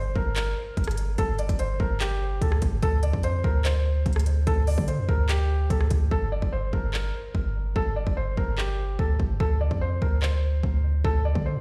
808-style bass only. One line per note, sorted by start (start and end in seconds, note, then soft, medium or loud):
0.00 0.14 G1 loud
0.16 0.55 G1 loud
0.77 1.17 G1 loud
1.18 1.48 G1 loud
1.49 1.79 G1 loud
1.80 2.39 G1 loud
2.41 2.61 D2 loud
2.62 2.82 G1 loud
2.83 3.12 D2 loud
3.13 3.43 F2 loud
3.44 4.03 D2 loud
4.06 4.45 D2 loud
4.47 4.77 D2 loud
4.78 5.00 D3 loud
4.98 5.08 F2 loud
5.09 5.68 D2 loud
5.70 5.90 D2 loud
5.91 6.11 D2 loud
6.11 6.41 G1 loud
6.42 6.72 G1 loud
6.73 7.12 G1 loud
7.35 7.74 G1 loud
7.76 8.05 G1 loud
8.07 8.36 G1 loud
8.37 8.97 G1 loud
8.99 9.19 D2 loud
9.20 9.39 G1 loud
9.40 9.70 D2 loud
9.71 10.01 F2 loud
10.02 10.61 D2 loud
10.63 11.03 D2 loud
11.05 11.34 D2 loud
11.35 11.57 D3 loud
11.56 11.61 F2 loud